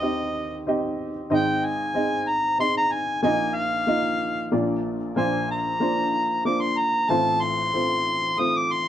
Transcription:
0.00 1.27 D#2 medium
0.00 1.27 D#3 medium
0.00 0.02 C4 medium
0.00 0.46 C4 medium
0.00 0.02 D#4 medium
0.00 0.46 D#4 medium
0.00 0.03 G4 medium
0.00 0.47 G4 medium
0.00 0.03 D#5 medium
0.00 0.68 D#5 medium
0.00 0.47 D#5 medium
0.67 1.11 C4 medium
0.67 1.11 D#4 medium
0.67 1.12 G4 medium
0.67 1.12 D#5 medium
1.30 3.19 G#1 medium
1.30 3.20 G#2 medium
1.30 1.75 C4 medium
1.30 1.75 D#4 medium
1.30 1.75 G#4 medium
1.30 1.75 D#5 medium
1.34 1.67 G5 medium
1.65 2.30 G#5 medium
1.94 2.39 C4 medium
1.94 2.39 D#4 medium
1.94 2.39 G#4 medium
1.94 2.40 D#5 medium
2.29 2.60 A#5 medium
2.58 3.03 C4 medium
2.58 3.03 D#4 soft
2.58 3.04 G#4 medium
2.58 3.04 D#5 medium
2.58 2.75 C6 loud
2.77 2.94 A#5 medium
2.92 3.22 G#5 medium
3.23 4.48 A#1 medium
3.23 4.48 A#2 medium
3.23 3.67 A#3 medium
3.23 3.68 D#4 medium
3.23 3.68 F4 medium
3.23 3.69 D#5 medium
3.23 3.57 G#5 medium
3.55 4.52 F5 medium
3.87 4.32 A#3 medium
3.87 4.32 D#4 medium
3.87 4.32 F4 medium
3.87 4.32 D#5 medium
4.52 5.13 A#1 medium
4.52 5.13 A#2 medium
4.52 4.96 A#3 medium
4.52 4.96 D4 medium
4.52 4.97 F4 medium
4.52 4.97 D5 medium
5.16 7.05 A#1 medium
5.16 7.05 A#2 medium
5.16 5.61 A#3 medium
5.16 5.61 D4 medium
5.16 5.61 F4 medium
5.16 5.61 C5 medium
5.16 5.47 G#5 medium
5.51 6.43 A#5 medium
5.80 6.25 A#3 medium
5.80 6.25 D4 medium
5.80 6.26 F4 medium
5.80 6.26 C5 medium
6.45 6.90 A#3 medium
6.45 6.89 D4 medium
6.45 6.90 F4 soft
6.45 6.90 C5 medium
6.45 6.63 D6 medium
6.61 6.80 C6 medium
6.78 7.12 A#5 medium
7.09 8.88 A1 medium
7.09 8.88 A2 medium
7.09 7.54 A3 medium
7.09 7.54 C4 medium
7.09 7.54 F4 medium
7.09 7.54 C5 medium
7.09 7.43 A5 medium
7.42 8.41 C6 loud
7.73 8.18 A3 medium
7.73 8.18 C4 medium
7.73 8.18 F4 soft
7.73 8.19 C5 medium
8.38 8.82 A3 medium
8.38 8.83 C4 medium
8.38 8.83 F4 medium
8.38 8.83 C5 medium
8.38 8.59 D#6 loud
8.57 8.74 D6 medium
8.72 8.88 C6 loud

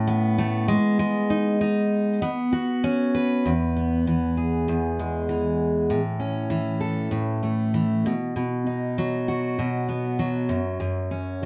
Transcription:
0.00 0.76 A2 medium
0.00 0.37 A3 medium
0.00 0.76 C#4 medium
0.07 2.22 B3 medium
0.38 0.68 A3 medium
0.68 0.98 G#3 medium
0.99 2.22 G#3 medium
1.30 1.60 D#4 medium
1.61 2.29 D#4 medium
2.22 3.77 B3 medium
2.53 3.52 F#4 medium
2.84 3.52 C#4 medium
3.15 4.37 B4 medium
3.46 4.67 E2 medium
3.77 5.98 B3 soft
4.07 5.29 E3 soft
4.37 5.98 G#4 soft
4.68 5.91 E2 medium
4.99 5.98 G#3 soft
5.29 6.50 E3 soft
5.90 7.10 A2 medium
6.20 8.12 C#4 soft
6.50 7.73 E3 medium
6.80 8.12 A4 soft
7.11 8.04 A2 medium
7.43 8.12 A3 soft
7.74 8.12 E3 medium
8.06 8.35 B2 medium
8.36 9.58 B2 medium
8.67 10.58 D#4 soft
8.98 10.19 F#3 medium
9.28 11.45 F#4 medium
9.59 10.51 B2 medium
9.89 10.58 B3 soft
10.19 11.42 F#3 medium
10.49 10.79 F#2 medium
10.80 11.45 F#2 medium
11.11 11.45 C#4 soft

